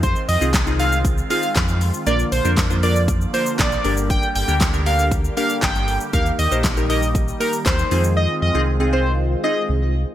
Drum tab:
HH |x-o-x-o-x-o-x-o-|x-o-x-o-x-o-x-o-|x-o-x-o-x-o-x-o-|x-o-x-o-x-o-x-o-|
SH |xxxxxxxxxxxxxxxx|xxxxxxxxxxxxxxxx|xxxxxxxxxxxxxxxx|xxxxxxxxxxxxxxxx|
CP |----x-------x---|----x-------x---|----x-------x---|----x-------x---|
SD |----o-------o---|----o-------o---|----o-------o---|----o-------o---|
BD |o---o---o---o---|----o---o---o---|o---o---o---o---|o---o---o---o---|

HH |----------------|
SH |----------------|
CP |----------------|
SD |----------------|
BD |----------------|